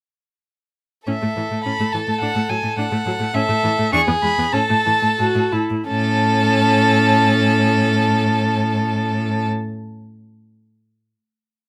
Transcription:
1.07 A2 C#4 A4 E5
1.22 A2 A3
1.36 A2 E3
1.51 A2 A3
1.63 A2 C#4 B5
1.79 A2 A3
1.92 A2 E3 A5
2.07 A2 A3
2.20 A2 D4 F#5
2.35 A2 A3
2.49 A2 F#3 G#5
2.63 A2 A3
2.76 A2 D4 F#5
2.91 A2 A3
3.05 A2 F#3
3.19 A2 A3
3.34 A2 C#4 A4 E5
3.48 A2 A3
3.63 A2 E3
3.78 A2 A3
3.92 E2 D4 G#4 C#6
4.07 E2 B3
4.22 E2 G#3 B5
4.38 E2 B3
4.53 A2 C#4 A4 A5
4.69 A2 A3
4.86 A2 E3
5.01 A2 A3
5.19 A2 F#4
5.35 A2
5.52 A2 E4
5.70 A2
5.87 A2 C#4 A4 A5

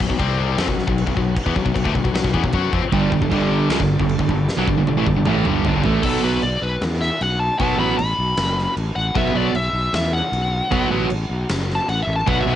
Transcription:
Already playing: B3 F#4 C#5
0.00 B1, kick
0.09 B1 B2 F#3, kick
0.19 C2 C3 G3 C4 G4 D5, kick, crash
0.58 F2 F3 B3 C4 F#4 C#5, snare, crash
0.67 B1 B2 F#3, kick
0.79 snare
0.87 B1 B2 F#3, kick
0.98 crash
1.07 B1 B2 F#3, kick
1.17 B1 B2 F#3, kick
1.37 kick, crash
1.46 E2 E3 B3, kick
1.55 B1 B2 F#3, kick
1.65 B1 B2 F#3, kick
1.74 B1 B2 F#3, kick, crash
1.84 D2 D3 A3, kick
1.95 B1 B2 F#3, kick
2.04 B1 B2 F#3, kick
2.13 B1 B2 F#3, snare, crash
2.24 B1 B2 F#3, kick
2.33 E2 E3 B3, kick
2.44 B1 B2 F#3, kick
2.53 F#2 F#3 C#4 F#4, kick, crash
2.73 F2 F3 C4, kick
2.81 muted fingered electric bass stroke, muted distorted electric guitar stroke
2.92 G1 G2 D3 G3 D4 A4, kick, crash
3.12 G1 G2 D3, kick
3.22 G1 G2 D3, kick
3.31 G1 G2 D3 G3, kick, crash
3.70 C#2 C#3 G#3, snare, crash
3.80 G1 G2 D3, kick
4.00 G1 G2 D3, kick
4.09 crash
4.19 G1 G2 D3, kick
4.29 G1 G2 D3, kick
4.49 snare
4.58 B1 B2 F#3
4.67 G1 G2 D3, kick
4.78 G1 G2 D3
4.87 G1 G2 D3, high tom
4.97 A1 A2 E3
5.06 G1 G2 D3, kick
5.16 G1 G2 D3
5.26 A1 A2 E3 A3, mid tom
5.44 G1 G2 D3 G3, mid tom
5.65 G1 G2 D3, floor tom
5.75 G1 G2 D3
5.84 A1 A2 E3 A3, floor tom
6.03 B1 B2 F#3 B3 A4, kick, crash
6.23 B1 B2 F#3 B3 B4
6.42 B1 D5, crash
6.62 B1 B4
6.81 E2, snare, crash
7.01 E5, snare
7.21 B1 F#5, crash
7.39 A5
7.59 B1 B2 F#3 B3 A5, kick, crash
7.78 A1 B2 F#3 B3 B5
7.98 A1 B5, crash
8.18 B1
8.37 F#1, snare, crash
8.58 snare
8.77 A1, crash
8.96 A1 F#5
9.15 B1 B2 F#3 B3 E5, kick, crash
9.34 B1 B2 F#3 B3 D5
9.54 B1 E5, crash
9.73 B1
9.93 E2 E5, snare, crash
10.13 F#5
10.32 B1, crash
10.71 B1 B2 F#3 B3, kick, crash
10.90 A1 B2 F#3 B3
11.10 A1, crash
11.30 B1
11.49 F#1, snare, crash
11.70 snare
11.75 A5
11.88 A1 F#5, crash
12.03 E5
12.07 A1
12.16 A5
12.27 B1 B2 F#3 B3 F#4 D5 F#5, kick, crash
12.41 E5
12.46 B1 B2 F#3 B3

